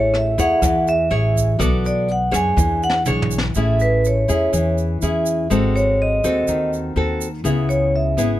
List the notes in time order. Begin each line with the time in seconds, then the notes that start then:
Already playing: A1 A3 E4 G#4 C#5
0.14 E5, cross-stick, closed hi-hat
0.38 E2 E4 G#4 C#5 F#5, kick, closed hi-hat, shaker
0.62 E2 E3, kick, cross-stick, closed hi-hat, shaker
0.87 E5, closed hi-hat, shaker
1.10 A1 E4 G#4 C#5, closed hi-hat
1.35 kick, closed hi-hat, shaker
1.59 B1 B3 F#4 A4 D5, kick, cross-stick, closed hi-hat, shaker
1.84 D5, closed hi-hat, shaker
2.08 F#5, closed hi-hat
2.31 F#2 D4 G#4 C#5 G#5, kick, cross-stick, closed hi-hat, shaker
2.57 E2 E3, kick, high tom, shaker
2.83 F#5, shaker
2.90 snare
3.06 B1 D4 G#4 C#5, mid tom, shaker
3.22 floor tom
3.31 shaker
3.38 snare
3.55 A1 A3 C#4 E4 G#4, shaker
3.80 B4, shaker
4.05 C#5, shaker
4.28 E2 C#4 E4 G#4, shaker
4.53 E2 E3, shaker
4.78 shaker
5.02 E2 C#4 E4 G#4, shaker
5.26 shaker
5.50 G#1 G#3 C4 F#4 A4, shaker
5.76 C#5, shaker
6.02 D#5
6.24 D#2 C4 F#4 A4, shaker
6.47 D#2 D#3, shaker
6.73 shaker
6.96 D#2 C4 F#4 A4
7.21 shaker
7.44 C#2 C#3 B3 E4 G#4, shaker
7.69 C#5, shaker
7.96 E5
8.17 G#1 B3 E4 G#4, shaker